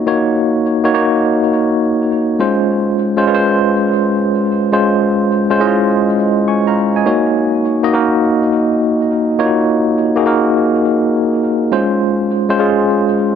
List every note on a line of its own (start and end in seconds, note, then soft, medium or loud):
0.00 0.07 A#3 medium
0.00 0.07 D#4 medium
0.00 2.40 F4 medium
0.00 0.07 F#4 medium
0.00 0.08 C#5 loud
0.00 2.41 D#5 loud
0.07 0.62 A#3 medium
0.07 0.62 D#4 medium
0.07 0.62 F#4 medium
0.07 0.62 C#5 loud
0.84 0.91 A#3 medium
0.84 0.91 D#4 medium
0.84 0.92 F#4 medium
0.84 0.92 C#5 medium
0.94 1.80 A#3 medium
0.94 1.81 D#4 medium
0.94 1.81 F#4 medium
0.94 1.81 C#5 medium
2.39 2.95 G#3 medium
2.39 2.95 C#4 medium
2.39 2.95 F4 medium
2.39 2.95 C5 medium
3.17 3.24 G#3 medium
3.17 3.24 C#4 medium
3.17 3.25 F4 medium
3.17 3.25 C5 loud
3.27 4.13 G#3 medium
3.27 4.14 C#4 medium
3.27 4.14 F4 medium
3.27 3.36 B4 medium
3.35 4.17 C5 loud
4.72 5.28 G#3 medium
4.72 5.28 C#4 medium
4.72 5.28 F4 medium
4.72 5.28 C5 loud
5.50 5.57 G#3 medium
5.50 5.57 C#4 medium
5.50 5.58 F4 medium
5.50 5.58 C5 loud
5.60 6.46 G#3 medium
5.60 6.47 C#4 medium
5.60 5.69 E4 medium
5.60 6.47 D#5 loud
5.67 6.50 F4 medium
6.48 6.66 G#5 medium
6.48 6.66 C#6 medium
6.67 6.95 F5 medium
6.67 6.95 A#5 medium
6.96 7.24 D#5 medium
6.96 7.24 G#5 medium
7.06 7.61 A#3 medium
7.06 7.61 D#4 medium
7.06 7.61 F#4 medium
7.06 7.61 C#5 loud
7.83 7.90 A#3 medium
7.83 7.91 D#4 medium
7.83 7.91 F#4 medium
7.83 7.91 D#5 loud
7.93 8.80 A#3 medium
7.93 8.80 D#4 medium
7.93 8.80 F#4 medium
7.93 8.80 A#4 loud
9.39 9.94 A#3 medium
9.39 9.94 D#4 medium
9.39 9.48 F4 medium
9.39 9.94 C#5 loud
9.46 9.97 F#4 medium
10.16 10.23 A#3 medium
10.16 10.24 D#4 medium
10.16 10.24 F#4 medium
10.16 10.24 G#4 loud
10.26 11.12 A#3 medium
10.26 11.13 D#4 medium
10.26 11.13 F#4 medium
10.26 11.13 A#4 loud
11.72 12.27 G#3 medium
11.72 12.27 C#4 medium
11.72 12.27 F4 medium
11.72 12.27 C5 loud
12.49 12.56 G#3 medium
12.49 12.57 C#4 medium
12.49 12.57 F4 medium
12.49 12.57 C5 loud
12.59 13.35 G#3 medium
12.59 13.35 C#4 medium
12.59 13.35 F4 medium
12.59 13.35 G#4 loud